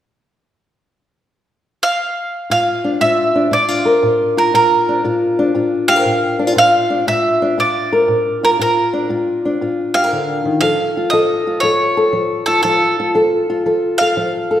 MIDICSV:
0, 0, Header, 1, 3, 480
1, 0, Start_track
1, 0, Key_signature, -2, "major"
1, 0, Tempo, 507185
1, 444, Time_signature, 4, 2, 24, 8
1, 13817, End_track
2, 0, Start_track
2, 0, Title_t, "Mandolin"
2, 0, Program_c, 0, 25
2, 1732, Note_on_c, 0, 77, 90
2, 2369, Note_off_c, 0, 77, 0
2, 2380, Note_on_c, 0, 77, 84
2, 2820, Note_off_c, 0, 77, 0
2, 2850, Note_on_c, 0, 76, 73
2, 3339, Note_off_c, 0, 76, 0
2, 3343, Note_on_c, 0, 74, 78
2, 4144, Note_off_c, 0, 74, 0
2, 4148, Note_on_c, 0, 70, 67
2, 4288, Note_off_c, 0, 70, 0
2, 4306, Note_on_c, 0, 70, 71
2, 4745, Note_off_c, 0, 70, 0
2, 5566, Note_on_c, 0, 77, 102
2, 6172, Note_off_c, 0, 77, 0
2, 6231, Note_on_c, 0, 77, 101
2, 6669, Note_off_c, 0, 77, 0
2, 6701, Note_on_c, 0, 76, 79
2, 7188, Note_off_c, 0, 76, 0
2, 7192, Note_on_c, 0, 74, 81
2, 7990, Note_off_c, 0, 74, 0
2, 7994, Note_on_c, 0, 70, 75
2, 8041, Note_off_c, 0, 70, 0
2, 8154, Note_on_c, 0, 70, 69
2, 8591, Note_off_c, 0, 70, 0
2, 9409, Note_on_c, 0, 77, 86
2, 10026, Note_off_c, 0, 77, 0
2, 10038, Note_on_c, 0, 77, 91
2, 10504, Note_on_c, 0, 75, 76
2, 10539, Note_off_c, 0, 77, 0
2, 10977, Note_off_c, 0, 75, 0
2, 10981, Note_on_c, 0, 73, 85
2, 11788, Note_off_c, 0, 73, 0
2, 11791, Note_on_c, 0, 69, 76
2, 11938, Note_off_c, 0, 69, 0
2, 11949, Note_on_c, 0, 69, 78
2, 12402, Note_off_c, 0, 69, 0
2, 13231, Note_on_c, 0, 77, 101
2, 13817, Note_off_c, 0, 77, 0
2, 13817, End_track
3, 0, Start_track
3, 0, Title_t, "Steel-string acoustic guitar"
3, 0, Program_c, 1, 25
3, 2366, Note_on_c, 1, 46, 58
3, 2376, Note_on_c, 1, 65, 55
3, 2692, Note_on_c, 1, 62, 51
3, 2814, Note_off_c, 1, 46, 0
3, 2845, Note_on_c, 1, 46, 68
3, 2846, Note_off_c, 1, 65, 0
3, 2850, Note_on_c, 1, 65, 51
3, 3172, Note_off_c, 1, 62, 0
3, 3175, Note_on_c, 1, 62, 48
3, 3294, Note_off_c, 1, 46, 0
3, 3321, Note_off_c, 1, 65, 0
3, 3321, Note_on_c, 1, 46, 57
3, 3325, Note_off_c, 1, 62, 0
3, 3325, Note_on_c, 1, 62, 47
3, 3487, Note_off_c, 1, 62, 0
3, 3487, Note_on_c, 1, 65, 46
3, 3648, Note_on_c, 1, 70, 63
3, 3772, Note_off_c, 1, 46, 0
3, 3813, Note_on_c, 1, 46, 72
3, 4128, Note_off_c, 1, 65, 0
3, 4138, Note_on_c, 1, 65, 49
3, 4259, Note_off_c, 1, 46, 0
3, 4296, Note_off_c, 1, 65, 0
3, 4296, Note_on_c, 1, 46, 67
3, 4300, Note_on_c, 1, 65, 58
3, 4625, Note_on_c, 1, 62, 49
3, 4741, Note_off_c, 1, 46, 0
3, 4774, Note_on_c, 1, 46, 74
3, 4777, Note_off_c, 1, 65, 0
3, 4781, Note_on_c, 1, 65, 56
3, 5096, Note_off_c, 1, 62, 0
3, 5100, Note_on_c, 1, 62, 59
3, 5220, Note_off_c, 1, 46, 0
3, 5248, Note_on_c, 1, 46, 54
3, 5251, Note_off_c, 1, 65, 0
3, 5255, Note_on_c, 1, 65, 52
3, 5567, Note_off_c, 1, 70, 0
3, 5571, Note_on_c, 1, 67, 69
3, 5639, Note_off_c, 1, 67, 0
3, 5639, Note_on_c, 1, 70, 54
3, 5698, Note_off_c, 1, 46, 0
3, 5726, Note_on_c, 1, 46, 63
3, 6046, Note_off_c, 1, 65, 0
3, 6050, Note_off_c, 1, 62, 0
3, 6050, Note_on_c, 1, 62, 58
3, 6123, Note_off_c, 1, 62, 0
3, 6123, Note_on_c, 1, 65, 48
3, 6177, Note_off_c, 1, 46, 0
3, 6204, Note_off_c, 1, 65, 0
3, 6206, Note_off_c, 1, 70, 0
3, 6207, Note_on_c, 1, 46, 69
3, 6215, Note_on_c, 1, 65, 54
3, 6532, Note_on_c, 1, 62, 53
3, 6658, Note_off_c, 1, 46, 0
3, 6694, Note_on_c, 1, 46, 75
3, 6695, Note_off_c, 1, 65, 0
3, 6699, Note_on_c, 1, 65, 54
3, 7018, Note_off_c, 1, 62, 0
3, 7022, Note_on_c, 1, 62, 58
3, 7142, Note_off_c, 1, 46, 0
3, 7171, Note_on_c, 1, 46, 59
3, 7176, Note_off_c, 1, 65, 0
3, 7179, Note_on_c, 1, 65, 49
3, 7501, Note_on_c, 1, 70, 64
3, 7621, Note_off_c, 1, 46, 0
3, 7648, Note_on_c, 1, 46, 62
3, 7978, Note_off_c, 1, 65, 0
3, 7982, Note_on_c, 1, 65, 53
3, 8099, Note_off_c, 1, 46, 0
3, 8119, Note_off_c, 1, 70, 0
3, 8120, Note_off_c, 1, 62, 0
3, 8132, Note_on_c, 1, 46, 68
3, 8135, Note_off_c, 1, 65, 0
3, 8139, Note_on_c, 1, 65, 55
3, 8455, Note_on_c, 1, 62, 53
3, 8581, Note_off_c, 1, 46, 0
3, 8605, Note_on_c, 1, 46, 61
3, 8609, Note_off_c, 1, 65, 0
3, 8613, Note_on_c, 1, 65, 51
3, 8935, Note_off_c, 1, 62, 0
3, 8948, Note_on_c, 1, 62, 50
3, 9058, Note_off_c, 1, 46, 0
3, 9098, Note_on_c, 1, 46, 54
3, 9101, Note_off_c, 1, 65, 0
3, 9105, Note_on_c, 1, 65, 46
3, 9413, Note_on_c, 1, 67, 58
3, 9500, Note_off_c, 1, 67, 0
3, 9500, Note_on_c, 1, 70, 51
3, 9544, Note_off_c, 1, 46, 0
3, 9583, Note_on_c, 1, 50, 61
3, 9888, Note_off_c, 1, 50, 0
3, 9892, Note_on_c, 1, 51, 55
3, 10041, Note_off_c, 1, 62, 0
3, 10048, Note_on_c, 1, 53, 71
3, 10051, Note_off_c, 1, 70, 0
3, 10052, Note_off_c, 1, 51, 0
3, 10054, Note_on_c, 1, 69, 54
3, 10379, Note_off_c, 1, 65, 0
3, 10383, Note_on_c, 1, 65, 51
3, 10498, Note_off_c, 1, 53, 0
3, 10532, Note_on_c, 1, 53, 70
3, 10535, Note_off_c, 1, 69, 0
3, 10539, Note_on_c, 1, 69, 61
3, 10852, Note_off_c, 1, 65, 0
3, 10856, Note_on_c, 1, 65, 48
3, 10979, Note_off_c, 1, 53, 0
3, 11004, Note_on_c, 1, 53, 53
3, 11010, Note_off_c, 1, 69, 0
3, 11013, Note_on_c, 1, 69, 58
3, 11319, Note_off_c, 1, 69, 0
3, 11330, Note_on_c, 1, 69, 64
3, 11454, Note_off_c, 1, 53, 0
3, 11478, Note_on_c, 1, 53, 67
3, 11797, Note_off_c, 1, 65, 0
3, 11809, Note_on_c, 1, 65, 48
3, 11930, Note_off_c, 1, 53, 0
3, 11949, Note_off_c, 1, 65, 0
3, 11949, Note_off_c, 1, 69, 0
3, 11965, Note_on_c, 1, 53, 68
3, 11971, Note_on_c, 1, 65, 56
3, 12288, Note_off_c, 1, 65, 0
3, 12300, Note_on_c, 1, 65, 58
3, 12412, Note_off_c, 1, 53, 0
3, 12443, Note_on_c, 1, 53, 67
3, 12449, Note_on_c, 1, 69, 62
3, 12762, Note_off_c, 1, 65, 0
3, 12773, Note_on_c, 1, 65, 55
3, 12890, Note_off_c, 1, 53, 0
3, 12919, Note_off_c, 1, 69, 0
3, 12926, Note_on_c, 1, 53, 58
3, 12931, Note_on_c, 1, 69, 52
3, 13245, Note_off_c, 1, 69, 0
3, 13258, Note_on_c, 1, 69, 60
3, 13371, Note_off_c, 1, 53, 0
3, 13409, Note_on_c, 1, 53, 68
3, 13720, Note_off_c, 1, 69, 0
3, 13731, Note_on_c, 1, 69, 55
3, 13817, Note_off_c, 1, 53, 0
3, 13817, Note_off_c, 1, 65, 0
3, 13817, Note_off_c, 1, 69, 0
3, 13817, End_track
0, 0, End_of_file